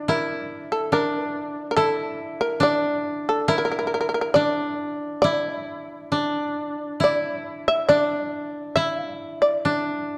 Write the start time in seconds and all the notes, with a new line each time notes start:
Already playing: D4
0.08 E4 A#4
0.72 A4
0.92 D4 A#4
1.71 A#4
1.77 E4 A4
2.41 A#4
2.60 D4 D5
3.29 A4
3.48 E4 A#4
3.58 A#4
3.65 A#4
3.72 A#4
3.79 A#4
3.87 A#4
3.94 A#4
4.01 A#4
4.09 A#4
4.14 A#4
4.21 A#4
4.34 D4 D5
5.22 E4 D5
5.46 D#5
5.61 E5
6.12 D4
7.00 E4 D5
7.45 A#4
7.68 E5
7.89 D4 D5
8.76 E4 E5
9.42 D5
9.65 D4